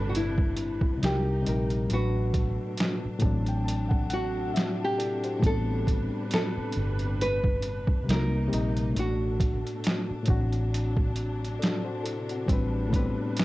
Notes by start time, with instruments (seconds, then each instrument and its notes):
Already playing: fingered electric bass G1, reed electric piano A2 G3 C4 D4 F#4 B4, string section C3 G3 D4 B4
0.09 nylon-string guitar F#4
0.15 nylon-string guitar E4, closed hi-hat
0.38 kick
0.57 closed hi-hat
0.81 kick
0.97 reed electric piano C3 G3
1.02 fingered electric bass C2, string section A#3 D#4, reed electric piano D#4 A#4, nylon-string guitar G4, snare, closed hi-hat
1.42 reed electric piano C3 G3
1.46 fingered electric bass A#1, reed electric piano D#4 A#4, closed hi-hat
1.70 closed hi-hat
1.87 reed electric piano A2 F#3, string section B2 A3 D4, closed hi-hat
1.91 fingered electric bass A1, reed electric piano D4 B4, nylon-string guitar F#4
2.34 kick, closed hi-hat
2.77 snare, closed hi-hat
3.05 muted fingered electric bass stroke
3.18 reed electric piano A2 F#3 A5, string section C3, kick, closed hi-hat
3.23 fingered electric bass A1, string section A3, reed electric piano C4 D4
3.46 reed electric piano G5, closed hi-hat
3.65 reed electric piano A5, closed hi-hat
3.89 reed electric piano F#5, kick
4.10 nylon-string guitar F#4, reed electric piano F#5, closed hi-hat
4.54 reed electric piano C4 F#4 E5, snare, closed hi-hat
4.84 nylon-string guitar G4
4.98 reed electric piano E4 A4 D5, closed hi-hat
5.24 reed electric piano F#4 C5, closed hi-hat
5.40 fingered electric bass A1, reed electric piano A2 G3 B3, string section G3 B4, kick, closed hi-hat
5.45 reed electric piano C4 D4, nylon-string guitar A4
5.87 kick, closed hi-hat
6.31 nylon-string guitar A4, snare, closed hi-hat
6.57 muted fingered electric bass stroke
6.72 closed hi-hat
6.77 fingered electric bass G1
6.99 closed hi-hat
7.21 nylon-string guitar B4, closed hi-hat
7.44 kick
7.62 closed hi-hat
7.87 kick
8.04 reed electric piano C3 G3, string section C3 A#3
8.08 fingered electric bass C2, reed electric piano A#3 D#4, string section D#4, nylon-string guitar A#4, snare, closed hi-hat
8.48 reed electric piano C3 G3
8.52 fingered electric bass A#1, reed electric piano A#3 D#4, closed hi-hat
8.77 closed hi-hat
8.93 reed electric piano A2 A3, string section B2 A3 D4, closed hi-hat
8.97 fingered electric bass A1, reed electric piano D4 F#4, nylon-string guitar F#4
9.40 kick, closed hi-hat
9.67 closed hi-hat
9.84 snare, closed hi-hat
10.11 muted fingered electric bass stroke
10.23 reed electric piano A2 C4, string section C3 F#3, closed hi-hat
10.28 fingered electric bass A1, reed electric piano D4 F#4, kick
10.52 closed hi-hat
10.74 closed hi-hat
10.97 kick
11.16 closed hi-hat
11.45 closed hi-hat
11.59 reed electric piano A4 D5, closed hi-hat
11.63 snare
11.85 reed electric piano F#4 C5
12.03 reed electric piano E4 A4, closed hi-hat
12.29 reed electric piano C4 F#4, closed hi-hat
12.46 fingered electric bass A1, reed electric piano A2 G3 C4, string section G3 B4, kick, closed hi-hat
12.51 reed electric piano D4 B4
12.89 reed electric piano A2 G3 B3
12.93 reed electric piano D4 B4, kick, closed hi-hat
12.99 reed electric piano C4
13.37 snare, closed hi-hat